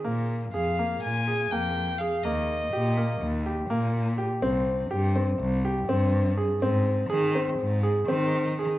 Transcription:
X:1
M:9/8
L:1/8
Q:3/8=82
K:Bbdor
V:1 name="Violin"
z2 f2 a2 g2 f | e4 z4 z | z8 z | z8 z |]
V:2 name="Grand piano"
B,2 A B,2 A B,2 A | B,2 G B,2 G B,2 G | C2 G C2 G C2 A | C2 A C2 A C2 A |]
V:3 name="Cello" clef=bass
B,,2 F,,2 B,,2 F,,3 | E,,2 B,,2 E,,2 B,,3 | C,,2 G,,2 C,,2 G,,3 | A,,2 E,2 A,,2 E,3 |]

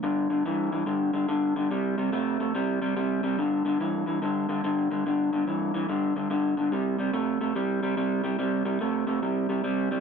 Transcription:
X:1
M:4/4
L:1/8
Q:"Swing" 1/4=144
K:C
V:1 name="Clean electric guitar" clef=bass
[G,,D,] [G,,D,] [G,,E,] [G,,E,] [G,,D,] [G,,D,] [G,,D,] [G,,D,] | [C,G,] [C,G,] [C,A,] [C,A,] [C,G,] [C,G,] [C,G,] [C,G,] | [G,,D,] [G,,D,] [G,,E,] [G,,E,] [G,,D,] [G,,D,] [G,,D,] [G,,D,] | [G,,D,] [G,,D,] [G,,E,] [G,,E,] [G,,D,] [G,,D,] [G,,D,] [G,,D,] |
[C,G,] [C,G,] [C,A,] [C,A,] [C,G,] [C,G,] [C,G,] [C,G,] | [C,G,] [C,G,] [C,A,] [C,A,] [C,G,] [C,G,] [C,G,] [C,G,] |]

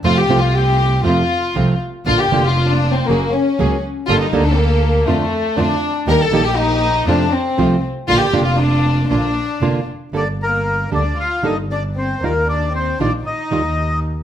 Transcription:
X:1
M:4/4
L:1/16
Q:1/4=118
K:Bb
V:1 name="Bandoneon"
z16 | z16 | z16 | z16 |
z16 | [K:Gm] d2 B4 d2 f2 e2 d2 c2 | B2 d2 c2 d2 e6 z2 |]
V:2 name="String section"
[A,CF]2 [A,CF]6 [A,CF]2 z2 [A,CF]2 z2 | [B,DF]2 [B,DF]6 [B,_G_A]2 z2 [B,GA]2 z2 | [B,GA]2 [B,GA]6 [A,DF]2 z2 [A,DF]2 z2 | [B,EG]2 [B,EG]6 [A,CF]2 z2 [A,CF]2 z2 |
[B,DF]2 [B,DF]6 [B,DF]2 z2 [B,DF]2 z2 | [K:Gm] z16 | z16 |]
V:3 name="Violin section"
F G2 F G4 F6 z2 | F G2 F2 D2 C B,2 _D4 z2 | F E2 D B,4 A,4 D3 z | B A2 G E4 D2 C4 z2 |
F G2 F D4 D6 z2 | [K:Gm] D2 B,4 D2 F2 E2 D2 C2 | B,2 D2 C2 D2 E6 z2 |]
V:4 name="Nylon-string guitar"
[C,F,A,CF]2 [C,F,A,CF]2 z4 [C,F,A,CF]2 z2 [C,F,A,CF]2 z2 | [D,B,DF]2 [D,B,DF]2 z4 [_G,B,_D_A]2 z2 [G,B,DA]2 z2 | [D,G,B,DA]2 [D,G,B,DA]2 z4 [D,A,DF]2 z2 [D,A,DF]2 z2 | [E,G,B,EG]2 [E,G,B,EG]2 z4 [C,F,A,CF]2 z2 [C,F,A,CF]2 z2 |
[D,B,DF]2 [D,B,DF]2 z4 [D,B,DF]2 z2 [D,B,DF]2 z2 | [K:Gm] [D,G,B,DA]2 z4 [D,G,B,DA]2 z2 [D,G,B,DA]2 z4 | [E,G,EF]2 z4 [E,G,EF]2 z2 [E,G,EF]2 z4 |]
V:5 name="Double bass" clef=bass
F,,2 C,,6 F,,2 z2 C,,2 z2 | B,,,2 F,,,6 _G,,,2 z2 _D,,2 z2 | G,,,2 D,,6 F,,2 z2 F,,2 z2 | E,,2 B,,,6 F,,2 z2 C,,2 z2 |
B,,,2 F,,,6 B,,,2 z2 F,,,2 z2 | [K:Gm] G,,,6 D,,2 z2 G,,,6 | E,,6 B,,,2 z2 E,,6 |]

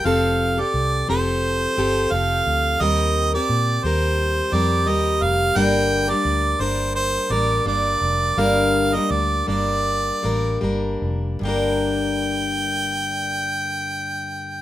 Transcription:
X:1
M:4/4
L:1/16
Q:"Swing 16ths" 1/4=86
K:Gm
V:1 name="Harmonica"
f3 d3 c6 f4 | e3 d3 c4 d2 e2 f2 | g3 d3 c2 c2 d2 d4 | f3 e d2 d6 z4 |
g16 |]
V:2 name="Steel-string acoustic guitar"
[F,CGA]3 [CGA]3 [F,CGA]4 [F,CGA]2 [F,CGA]4 | [E,G,CGB]3 [CGB]3 [G,CGB]4 [G,CGB]2 [G,CGB]4 | [G,,D,G,B,DB]3 [G,B,DB]3 [G,B,DB]4 [G,B,DB]2 [G,B,DB]4 | [G,,D,G,B,DB]3 [G,B,DB]3 [G,B,DB]4 [G,B,DB]2 [G,B,DB]4 |
[G,,D,G,B,DB]16 |]
V:3 name="Fingered electric bass" clef=bass
F,,,4 C,,2 F,,,4 G,,,2 F,,,2 D,,2 | E,,4 B,,2 E,,4 F,,2 E,,2 F,,,2 | G,,,4 D,,2 G,,,4 A,,,2 G,,,2 F,,,2 | G,,,4 D,,2 G,,,4 A,,,2 G,,,2 F,,,2 |
G,,,16 |]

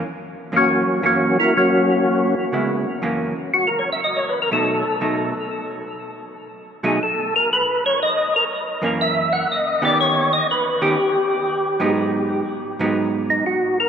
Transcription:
X:1
M:4/4
L:1/16
Q:"Swing" 1/4=121
K:F#mix
V:1 name="Tonewheel organ"
z4 [F,A,CF]4 [F,A,CF]2 [A,EFA]2 [F,A,CF]4- | [F,A,CF]2 z8 z2 F A c e | d c B A =A6 z6 | z6 G2 =A2 ^A2 B2 c2 |
d2 A2 z4 e2 f2 d2 =d2 | c2 d2 B2 =G8- G2 | z8 z2 D2 F2 A2 |]
V:2 name="Hollow-body jazz guitar"
z4 [F,,E,A,C]2 z2 [F,,E,A,C]2 z6 | z4 [C,G,B,E]2 z2 [F,,E,A,C]2 z6 | z4 [B,,F,=A,D]2 z2 [B,,F,A,D]2 z6 | z6 [B,,F,=A,D]2 z8 |
z6 [F,,E,A,C]6 z2 [D,B,C=G]2- | [D,B,C=G]4 z2 [D,B,CG]2 z6 [^G,,F,B,D]2- | [G,,F,B,D]4 z2 [G,,F,B,D]6 z4 |]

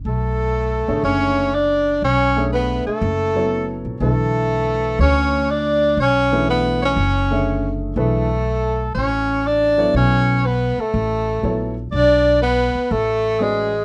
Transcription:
X:1
M:4/4
L:1/8
Q:"Swing" 1/4=121
K:Bdor
V:1 name="Alto saxophone"
A4 c2 d2 | c2 B A4 z | A4 c2 d2 | c2 B c4 z |
A4 c2 d2 | c2 B A4 z | d2 B2 A2 G2 |]
V:2 name="Grand piano"
z3 [D,A,Gce]3 z2 | z [A,DGce]3 z [F,B,EAc]3 | [D,E,A,AB]4- [D,E,A,AB] z3 | z [E,A,DGB]3 z [D,A,Gce]3 |
[E,A,DGB] z6 [F,B,EAc]- | [F,B,EAc]2 z4 [F,B,EAc] z | z6 [G,CFBd] z |]
V:3 name="Tenor saxophone"
A,4 C2 D2 | C2 B, A,4 z | A,4 C2 D2 | C2 B, C4 z |
A,4 C2 D2 | C2 B, A,4 z | D2 B,2 A,2 G,2 |]
V:4 name="Upright bass" clef=bass
B,,,3 A,,, F,,,4 | B,,,3 z F,,,3 ^A,,, | B,,,4 D,,4 | B,,,4 F,,,4 |
B,,,4 A,,,4 | B,,,3 z A,,,2 ^A,,,2 | B,,,3 z A,,,4 |]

